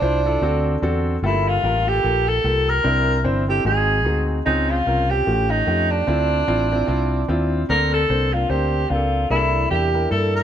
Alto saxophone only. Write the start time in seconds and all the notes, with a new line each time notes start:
Already playing: D4
1.25 E4
1.48 F4
1.88 G4
2.28 A4
2.69 A#4
3.49 G4
3.66 G#4
4.46 D#4
4.70 F4
5.10 G4
5.50 D#4
5.91 D4
7.69 A#4
7.93 A4
8.33 F4
8.50 G4
8.89 F4
9.31 E4
9.70 G4
10.11 A4
10.35 A#4